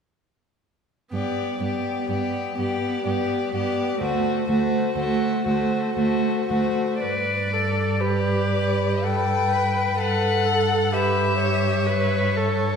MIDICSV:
0, 0, Header, 1, 5, 480
1, 0, Start_track
1, 0, Key_signature, 1, "major"
1, 0, Tempo, 991736
1, 546, Time_signature, 3, 2, 24, 8
1, 1022, Tempo, 956938
1, 2462, Tempo, 1018676
1, 4382, Tempo, 944882
1, 6264, End_track
2, 0, Start_track
2, 0, Title_t, "Violin"
2, 0, Program_c, 0, 40
2, 559, Note_on_c, 0, 74, 20
2, 782, Note_off_c, 0, 74, 0
2, 785, Note_on_c, 0, 74, 21
2, 1012, Note_off_c, 0, 74, 0
2, 1015, Note_on_c, 0, 74, 22
2, 1257, Note_off_c, 0, 74, 0
2, 1261, Note_on_c, 0, 74, 20
2, 1496, Note_off_c, 0, 74, 0
2, 1499, Note_on_c, 0, 74, 25
2, 1735, Note_off_c, 0, 74, 0
2, 1741, Note_on_c, 0, 74, 26
2, 1971, Note_off_c, 0, 74, 0
2, 1976, Note_on_c, 0, 72, 33
2, 2208, Note_off_c, 0, 72, 0
2, 2211, Note_on_c, 0, 72, 30
2, 2448, Note_off_c, 0, 72, 0
2, 2451, Note_on_c, 0, 72, 30
2, 2687, Note_off_c, 0, 72, 0
2, 2691, Note_on_c, 0, 72, 26
2, 2918, Note_off_c, 0, 72, 0
2, 2921, Note_on_c, 0, 72, 28
2, 3170, Note_off_c, 0, 72, 0
2, 3175, Note_on_c, 0, 72, 24
2, 3419, Note_off_c, 0, 72, 0
2, 3901, Note_on_c, 0, 74, 35
2, 4378, Note_on_c, 0, 79, 38
2, 4385, Note_off_c, 0, 74, 0
2, 4866, Note_off_c, 0, 79, 0
2, 4872, Note_on_c, 0, 78, 46
2, 5336, Note_on_c, 0, 76, 43
2, 5344, Note_off_c, 0, 78, 0
2, 6062, Note_off_c, 0, 76, 0
2, 6264, End_track
3, 0, Start_track
3, 0, Title_t, "Violin"
3, 0, Program_c, 1, 40
3, 546, Note_on_c, 1, 67, 23
3, 777, Note_off_c, 1, 67, 0
3, 780, Note_on_c, 1, 67, 18
3, 1013, Note_off_c, 1, 67, 0
3, 1018, Note_on_c, 1, 67, 20
3, 1254, Note_off_c, 1, 67, 0
3, 1257, Note_on_c, 1, 67, 20
3, 1497, Note_off_c, 1, 67, 0
3, 1500, Note_on_c, 1, 67, 25
3, 1736, Note_off_c, 1, 67, 0
3, 1738, Note_on_c, 1, 67, 22
3, 1970, Note_off_c, 1, 67, 0
3, 1975, Note_on_c, 1, 66, 30
3, 2205, Note_off_c, 1, 66, 0
3, 2208, Note_on_c, 1, 66, 26
3, 2453, Note_off_c, 1, 66, 0
3, 2460, Note_on_c, 1, 66, 32
3, 2682, Note_off_c, 1, 66, 0
3, 2685, Note_on_c, 1, 66, 26
3, 2924, Note_off_c, 1, 66, 0
3, 2926, Note_on_c, 1, 66, 29
3, 3167, Note_off_c, 1, 66, 0
3, 3170, Note_on_c, 1, 66, 21
3, 3411, Note_off_c, 1, 66, 0
3, 3414, Note_on_c, 1, 74, 26
3, 3886, Note_on_c, 1, 71, 27
3, 3893, Note_off_c, 1, 74, 0
3, 4125, Note_off_c, 1, 71, 0
3, 4128, Note_on_c, 1, 71, 24
3, 4846, Note_off_c, 1, 71, 0
3, 4857, Note_on_c, 1, 69, 27
3, 5328, Note_off_c, 1, 69, 0
3, 5340, Note_on_c, 1, 71, 29
3, 5577, Note_off_c, 1, 71, 0
3, 5583, Note_on_c, 1, 73, 29
3, 6264, Note_off_c, 1, 73, 0
3, 6264, End_track
4, 0, Start_track
4, 0, Title_t, "Viola"
4, 0, Program_c, 2, 41
4, 540, Note_on_c, 2, 59, 20
4, 778, Note_off_c, 2, 59, 0
4, 785, Note_on_c, 2, 59, 17
4, 1011, Note_off_c, 2, 59, 0
4, 1014, Note_on_c, 2, 59, 20
4, 1253, Note_off_c, 2, 59, 0
4, 1256, Note_on_c, 2, 59, 23
4, 1495, Note_off_c, 2, 59, 0
4, 1498, Note_on_c, 2, 59, 23
4, 1734, Note_off_c, 2, 59, 0
4, 1737, Note_on_c, 2, 59, 26
4, 1959, Note_off_c, 2, 59, 0
4, 1962, Note_on_c, 2, 57, 26
4, 2202, Note_off_c, 2, 57, 0
4, 2206, Note_on_c, 2, 57, 25
4, 2450, Note_off_c, 2, 57, 0
4, 2453, Note_on_c, 2, 57, 28
4, 2688, Note_off_c, 2, 57, 0
4, 2695, Note_on_c, 2, 57, 29
4, 2926, Note_off_c, 2, 57, 0
4, 2929, Note_on_c, 2, 57, 26
4, 3174, Note_off_c, 2, 57, 0
4, 3179, Note_on_c, 2, 57, 23
4, 3420, Note_off_c, 2, 57, 0
4, 3423, Note_on_c, 2, 71, 23
4, 3662, Note_on_c, 2, 69, 25
4, 3670, Note_off_c, 2, 71, 0
4, 3886, Note_on_c, 2, 67, 25
4, 3893, Note_off_c, 2, 69, 0
4, 4374, Note_on_c, 2, 69, 24
4, 4381, Note_off_c, 2, 67, 0
4, 4622, Note_on_c, 2, 71, 26
4, 4630, Note_off_c, 2, 69, 0
4, 4852, Note_off_c, 2, 71, 0
4, 4855, Note_on_c, 2, 71, 28
4, 5094, Note_on_c, 2, 69, 26
4, 5102, Note_off_c, 2, 71, 0
4, 5332, Note_on_c, 2, 67, 29
4, 5340, Note_off_c, 2, 69, 0
4, 5809, Note_on_c, 2, 71, 37
4, 5817, Note_off_c, 2, 67, 0
4, 6064, Note_on_c, 2, 69, 35
4, 6072, Note_off_c, 2, 71, 0
4, 6264, Note_off_c, 2, 69, 0
4, 6264, End_track
5, 0, Start_track
5, 0, Title_t, "Cello"
5, 0, Program_c, 3, 42
5, 544, Note_on_c, 3, 43, 23
5, 582, Note_off_c, 3, 43, 0
5, 777, Note_on_c, 3, 43, 17
5, 816, Note_off_c, 3, 43, 0
5, 1012, Note_on_c, 3, 43, 22
5, 1052, Note_off_c, 3, 43, 0
5, 1259, Note_on_c, 3, 43, 21
5, 1299, Note_off_c, 3, 43, 0
5, 1499, Note_on_c, 3, 43, 25
5, 1539, Note_off_c, 3, 43, 0
5, 1737, Note_on_c, 3, 43, 25
5, 1778, Note_off_c, 3, 43, 0
5, 1973, Note_on_c, 3, 38, 30
5, 2013, Note_off_c, 3, 38, 0
5, 2213, Note_on_c, 3, 38, 28
5, 2253, Note_off_c, 3, 38, 0
5, 2453, Note_on_c, 3, 38, 33
5, 2491, Note_off_c, 3, 38, 0
5, 2692, Note_on_c, 3, 38, 32
5, 2729, Note_off_c, 3, 38, 0
5, 2929, Note_on_c, 3, 38, 30
5, 2967, Note_off_c, 3, 38, 0
5, 3178, Note_on_c, 3, 38, 26
5, 3215, Note_off_c, 3, 38, 0
5, 3424, Note_on_c, 3, 43, 25
5, 4846, Note_off_c, 3, 43, 0
5, 4866, Note_on_c, 3, 43, 27
5, 6264, Note_off_c, 3, 43, 0
5, 6264, End_track
0, 0, End_of_file